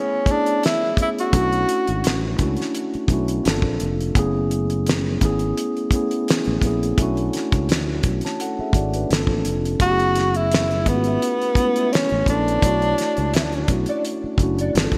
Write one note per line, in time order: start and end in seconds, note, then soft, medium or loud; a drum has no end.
0.00 0.26 A3 medium
0.00 0.27 B3 medium
0.00 0.32 C#4 medium
0.00 0.99 C#4 medium
0.00 0.30 E4 medium
0.00 0.31 G#4 medium
0.26 0.82 A3 medium
0.26 0.82 B3 soft
0.26 0.83 E4 medium
0.26 0.83 C#5 medium
0.26 kick medium
0.26 closed hi-hat medium
0.31 0.64 D4 medium
0.31 0.84 G#4 medium
0.46 closed hi-hat soft
0.63 0.97 E4 medium
0.63 snare medium
0.63 closed hi-hat medium
0.97 1.25 A3 medium
0.97 1.26 B3 soft
0.97 1.26 C#4 soft
0.97 1.27 E4 soft
0.97 kick medium
0.97 closed hi-hat medium
1.02 1.09 E4 medium
1.02 1.27 G#4 medium
1.19 2.21 F#4 medium
1.19 closed hi-hat soft
1.32 1.64 B1 medium
1.32 2.14 A3 medium
1.32 2.14 C#4 medium
1.32 2.15 D4 medium
1.32 2.16 E4 medium
1.32 kick medium
1.32 closed hi-hat medium
1.37 2.16 F#4 medium
1.52 closed hi-hat soft
1.69 closed hi-hat medium
1.87 2.02 G#1 medium
1.87 closed hi-hat soft
2.04 2.35 A1 medium
2.04 snare medium
2.04 closed hi-hat medium
2.38 2.56 C#2 medium
2.38 2.94 A3 medium
2.38 2.94 C#4 medium
2.38 2.95 D4 medium
2.38 2.95 E4 medium
2.38 kick medium
2.38 closed hi-hat medium
2.42 2.96 F#4 medium
2.57 closed hi-hat soft
2.61 snare soft
2.75 closed hi-hat medium
2.94 muted fingered electric bass stroke soft
2.94 closed hi-hat soft
3.08 3.39 B1 medium
3.08 3.45 A3 medium
3.08 3.45 C#4 medium
3.08 3.45 D4 medium
3.08 kick medium
3.08 closed hi-hat medium
3.12 3.46 E4 medium
3.12 3.47 F#4 medium
3.28 closed hi-hat soft
3.44 3.62 G1 medium
3.44 4.02 A#3 medium
3.44 4.03 C4 medium
3.44 4.03 D4 medium
3.44 4.04 F4 medium
3.44 snare medium
3.44 closed hi-hat medium
3.48 4.04 A4 medium
3.62 3.77 A#1 medium
3.62 kick medium
3.80 4.11 F1 medium
3.80 closed hi-hat medium
4.01 closed hi-hat soft
4.15 5.18 F#1 medium
4.15 4.96 A3 medium
4.15 4.97 B3 medium
4.15 4.97 C#4 medium
4.15 4.98 E4 medium
4.15 kick loud
4.15 closed hi-hat medium
4.19 4.98 G#4 loud
4.51 closed hi-hat medium
4.70 closed hi-hat soft
4.87 snare medium
4.87 closed hi-hat medium
5.21 5.52 G#1 medium
5.21 5.76 A3 medium
5.21 5.76 B3 medium
5.21 5.77 C#4 medium
5.21 5.78 E4 medium
5.21 kick medium
5.21 closed hi-hat medium
5.25 5.78 G#4 medium
5.39 closed hi-hat soft
5.57 closed hi-hat medium
5.77 closed hi-hat soft
5.91 6.47 A3 medium
5.91 6.47 B3 medium
5.91 6.48 C#4 medium
5.91 kick medium
5.91 closed hi-hat medium
5.95 6.48 E4 medium
5.95 6.49 G#4 medium
6.11 closed hi-hat soft
6.28 snare loud
6.28 closed hi-hat medium
6.44 6.61 A1 medium
6.44 closed hi-hat soft
6.62 6.93 A#1 medium
6.62 6.90 A3 medium
6.62 6.90 B3 medium
6.62 6.91 C#4 medium
6.62 kick medium
6.62 closed hi-hat medium
6.66 6.92 E4 medium
6.66 6.92 G#4 medium
6.83 closed hi-hat soft
6.98 7.28 B1 medium
6.98 7.79 A3 medium
6.98 7.79 C#4 medium
6.98 7.80 D4 medium
6.98 7.81 E4 medium
6.98 kick loud
6.98 closed hi-hat medium
7.02 7.81 F#4 loud
7.17 closed hi-hat soft
7.33 snare soft
7.33 closed hi-hat medium
7.52 7.67 C#2 medium
7.52 kick medium
7.52 closed hi-hat soft
7.69 7.99 D2 medium
7.69 snare loud
7.69 closed hi-hat medium
8.03 8.20 B1 medium
8.03 kick medium
8.03 closed hi-hat medium
8.21 8.39 A5 medium
8.21 closed hi-hat soft
8.26 8.40 C#5 soft
8.26 snare soft
8.40 8.59 A4 medium
8.40 8.58 F#5 medium
8.40 closed hi-hat medium
8.59 8.75 G#4 soft
8.59 8.75 E5 medium
8.59 muted fingered electric bass stroke soft
8.73 9.04 G#1 medium
8.73 8.94 F#4 soft
8.73 8.94 D5 medium
8.73 kick medium
8.73 closed hi-hat medium
8.94 9.10 D4 soft
8.94 9.28 B4 medium
8.94 closed hi-hat soft
9.09 9.26 G1 medium
9.09 9.67 A#3 medium
9.09 9.68 C4 medium
9.09 9.68 D4 medium
9.09 9.69 F4 medium
9.09 snare medium
9.09 closed hi-hat medium
9.14 9.69 A4 medium
9.27 9.42 A1 medium
9.27 kick medium
9.45 9.76 F1 medium
9.45 closed hi-hat medium
9.65 closed hi-hat soft
9.79 10.87 F#1 medium
9.79 10.61 A3 medium
9.79 10.61 B3 medium
9.79 10.62 C#4 medium
9.79 10.63 E4 medium
9.79 10.38 F#4 loud
9.79 kick loud
9.79 closed hi-hat medium
9.84 9.89 G4 medium
9.91 10.66 G#4 medium
10.00 closed hi-hat soft
10.15 snare soft
10.15 closed hi-hat medium
10.34 10.90 E4 medium
10.34 closed hi-hat soft
10.52 snare loud
10.52 closed hi-hat medium
10.71 closed hi-hat soft
10.85 11.17 G#1 medium
10.85 11.40 A3 medium
10.85 11.41 B3 medium
10.85 11.95 B3 medium
10.85 11.41 C#4 medium
10.85 11.42 E4 medium
10.85 kick medium
10.85 closed hi-hat medium
10.89 10.95 F4 medium
10.96 11.46 F#4 medium
11.04 11.20 A3 soft
11.04 11.20 E4 medium
11.04 11.19 G#4 medium
11.04 closed hi-hat soft
11.22 closed hi-hat medium
11.42 closed hi-hat soft
11.55 11.63 G#3 soft
11.55 12.12 B3 medium
11.55 12.12 C#4 medium
11.55 12.13 E4 medium
11.55 kick medium
11.55 closed hi-hat medium
11.60 12.14 A3 medium
11.60 12.13 B4 medium
11.76 11.90 A3 soft
11.76 11.90 E4 medium
11.76 11.90 G#4 medium
11.76 closed hi-hat soft
11.93 12.28 C#4 medium
11.93 snare loud
11.93 closed hi-hat medium
12.09 12.26 A1 medium
12.09 closed hi-hat soft
12.26 12.57 A#1 medium
12.26 12.54 A3 medium
12.26 12.55 B3 medium
12.26 12.56 C#4 medium
12.26 13.36 D4 medium
12.26 12.56 E4 medium
12.26 kick medium
12.26 closed hi-hat medium
12.31 12.57 A4 medium
12.48 closed hi-hat soft
12.62 12.93 B1 medium
12.62 13.43 A3 medium
12.62 13.45 D4 medium
12.62 13.45 E4 medium
12.62 13.44 C#5 medium
12.62 kick medium
12.62 closed hi-hat medium
12.67 13.46 F#4 medium
12.82 closed hi-hat soft
12.98 snare soft
12.98 closed hi-hat medium
13.17 13.31 C#2 medium
13.17 closed hi-hat soft
13.34 13.64 D2 medium
13.34 13.45 E4 medium
13.34 snare loud
13.34 closed hi-hat medium
13.44 13.56 D4 medium
13.52 13.64 C#4 medium
13.52 closed hi-hat soft
13.62 13.70 D4 medium
13.68 13.85 B1 medium
13.68 14.23 A3 medium
13.68 14.24 C#4 medium
13.68 14.24 D4 medium
13.68 14.25 E4 medium
13.68 kick medium
13.68 closed hi-hat medium
13.73 14.25 F#4 medium
13.86 14.02 F#4 soft
13.86 14.02 A4 soft
13.86 14.02 D5 medium
13.86 closed hi-hat soft
14.05 closed hi-hat medium
14.24 muted fingered electric bass stroke soft
14.38 14.69 F#1 medium
14.38 14.74 A3 medium
14.38 14.75 C#4 medium
14.38 14.75 D4 medium
14.38 kick medium
14.38 closed hi-hat medium
14.42 14.76 E4 medium
14.42 14.76 F#4 medium
14.59 14.73 F#4 soft
14.59 14.73 A4 soft
14.59 14.73 D5 medium
14.59 closed hi-hat soft
14.73 14.91 G1 medium
14.73 14.98 A#3 medium
14.73 14.98 C4 medium
14.73 14.98 D4 medium
14.73 14.98 F4 medium
14.73 closed hi-hat medium
14.78 14.83 G#4 medium
14.78 snare loud
14.84 14.98 A4 medium
14.91 14.98 A1 medium
14.91 kick medium
14.91 closed hi-hat soft